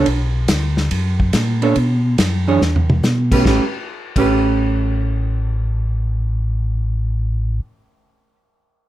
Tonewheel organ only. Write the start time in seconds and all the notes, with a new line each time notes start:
0.06 B1
0.48 D2
0.91 F#2
1.34 A#2
1.76 B2
2.19 F#2
2.61 E2
3.03 B2
3.45 A1
4.16 A1